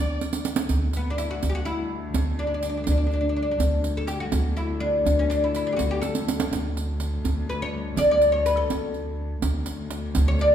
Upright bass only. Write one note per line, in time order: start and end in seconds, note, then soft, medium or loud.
0.00 0.62 D2 medium
0.69 1.34 D2 medium
1.43 2.07 D2 medium
2.14 2.79 D2 medium
2.87 3.52 D2 medium
3.59 4.24 D2 medium
4.32 4.97 D2 medium
5.05 5.70 D2 medium
5.80 6.44 D2 medium
6.52 7.16 D2 medium
7.24 7.89 D2 medium
7.96 8.61 D2 medium
8.71 9.35 D2 medium
9.42 10.07 D2 medium
10.16 10.55 D2 loud